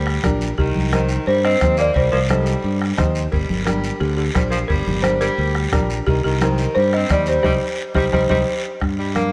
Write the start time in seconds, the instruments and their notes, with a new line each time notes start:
Already playing: fingered electric bass D2, tenor saxophone G3, marimba A#4
0.07 bombo rim
0.23 fingered electric bass A#1, upright piano D4 G4 A#4, bombo low, bombo rim, high conga, low conga, short guiro
0.41 short guiro
0.58 fingered electric bass C2, tenor saxophone D#3, marimba G4, bombo low, long guiro
0.75 fingered electric bass C2, high conga
0.92 tenor saxophone D#3, upright piano D#4 G4 C5, marimba A#4, bombo rim, high conga, short guiro
1.09 short guiro
1.26 fingered electric bass G2, tenor saxophone G3, marimba C5, long guiro
1.44 tenor saxophone C4, marimba D#5, bombo rim
1.60 fingered electric bass D#2, upright piano D#4 G4 C5, bombo low, bombo rim, high conga, short guiro
1.77 tenor saxophone A#3, marimba D5, short guiro
1.93 fingered electric bass C2, tenor saxophone G3, marimba C5, bombo low, long guiro
2.11 fingered electric bass C2, tenor saxophone F3, marimba A#4
2.28 tenor saxophone G3, upright piano D#4 G4 A4, marimba C5, bombo rim, high conga, short guiro
2.46 short guiro
2.62 fingered electric bass G2, long guiro
2.82 bombo rim
2.97 fingered electric bass D#2, upright piano D#4 G4 C5, bombo low, bombo rim, high conga, low conga, short guiro
3.15 short guiro
3.32 fingered electric bass G1, tenor saxophone G3, marimba A#4, bombo low, long guiro
3.49 fingered electric bass G1, high conga
3.65 tenor saxophone G3, upright piano D4 G4 A#4, marimba A#4, bombo rim, high conga, short guiro
3.84 short guiro
4.00 fingered electric bass D2, tenor saxophone D3, marimba G4, long guiro
4.17 tenor saxophone D3, marimba G4
4.34 fingered electric bass A#1, tenor saxophone G3, upright piano D4 G4 C5, marimba A#4, bombo low, bombo rim, high conga, short guiro
4.50 tenor saxophone F3, marimba A#4, short guiro
4.68 fingered electric bass G1, tenor saxophone G3, marimba A#4, bombo low, long guiro
4.87 fingered electric bass G1, high conga, low conga
5.02 tenor saxophone G3, upright piano D4 G4 A#4, marimba C5, bombo rim, high conga, short guiro
5.21 tenor saxophone G3, marimba A#4, short guiro
5.38 fingered electric bass D2, long guiro
5.55 bombo rim
5.72 fingered electric bass A#1, upright piano D4 G4 A#4, bombo low, bombo rim, high conga, low conga, short guiro
5.90 short guiro
6.06 fingered electric bass C2, tenor saxophone D#3, marimba G4, bombo low, long guiro
6.24 fingered electric bass C2, tenor saxophone D#3, marimba G4
6.41 tenor saxophone D#3, upright piano D#4 G4 C5, marimba A#4, bombo rim, high conga, short guiro
6.58 short guiro
6.75 fingered electric bass G2, tenor saxophone G3, marimba C5, long guiro
6.93 tenor saxophone C4, marimba D#5, bombo rim
7.09 fingered electric bass D#2, tenor saxophone G3, upright piano D#4 G4 C5, marimba D5, bombo low, bombo rim, high conga, short guiro
7.26 tenor saxophone G3, marimba C5, short guiro
7.43 fingered electric bass C2, tenor saxophone G3, upright piano D#4 G4 C5, marimba G4 C5 D#5, bombo low, high conga, long guiro
7.94 fingered electric bass C2, tenor saxophone G3, upright piano D#4 G4 C5, marimba G4 C5 D#5, bombo low, high conga, long guiro
8.12 fingered electric bass C2, tenor saxophone G3, upright piano D#4 G4 C5, marimba G4 C5 D#5, bombo low, high conga, long guiro
8.29 fingered electric bass C2, tenor saxophone G3, upright piano D#4 G4 C5, marimba G4 C5 D#5, bombo low, high conga, long guiro
8.80 fingered electric bass G2, bombo low, bombo rim, long guiro
8.99 tenor saxophone G3
9.15 tenor saxophone A#3, upright piano D4 G4 A#4, bombo rim, high conga, short guiro